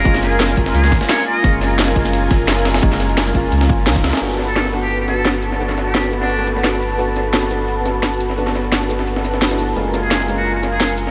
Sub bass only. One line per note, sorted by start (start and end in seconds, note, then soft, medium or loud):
0.05 0.56 F#1 loud
0.57 0.73 F#1 medium
0.74 0.94 C#2 loud
0.92 1.00 F#1 loud
1.44 1.95 F#1 loud
1.96 2.29 F#1 medium
2.31 2.82 F#1 medium
2.83 3.34 F#1 loud
3.35 3.51 F#1 medium
3.52 3.71 C#2 loud
3.69 3.88 F#1 loud
3.87 3.97 C#2 medium
3.96 4.03 F#1 loud
4.04 4.12 C#2 medium
4.22 9.75 G1 medium
9.76 11.11 F#1 medium